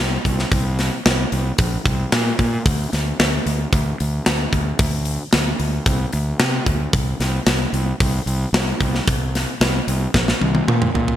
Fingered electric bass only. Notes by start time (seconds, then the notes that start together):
Already playing: C2
0.25 C2
0.52 C2
1.06 C2
1.32 C2
1.59 A#1
1.86 C2
2.12 A#2
2.39 A#2
2.66 D2
2.93 D2
3.20 D2
3.46 D2
3.73 D2
4.00 D2
4.27 D2
4.53 D2
4.79 D2
5.33 D2
5.60 D2
5.86 C2
6.13 D2
6.40 C3
6.67 D2
6.94 C2
7.20 C2
7.46 C2
7.73 C2
8.01 C2
8.26 C2
8.53 C2
8.81 C2
9.08 C2
9.60 C2
9.87 C2
10.14 A#1
10.41 C2
10.68 A#2
10.94 A#2